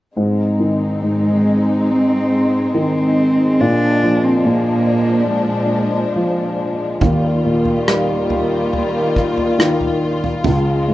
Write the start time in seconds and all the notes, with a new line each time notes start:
0.16 G#2 G#3 C4 D#4
0.59 D#3
1.02 G#2 G#3
1.90 C4
2.74 D#3 C4
3.59 A#2 F3 D4
4.03 F3
4.24 C4
4.45 A#2 A#3
5.31 G#3
6.16 F3
7.01 D#2 D#3 G3 F4, kick, floor tom
7.45 A#2
7.65 floor tom
7.88 G3, cross-stick
8.30 floor tom
8.73 floor tom
9.16 kick
9.38 floor tom
9.59 D#3, cross-stick
9.81 floor tom
10.24 floor tom
10.44 C#2 C#3 G#3, floor tom
10.88 G#2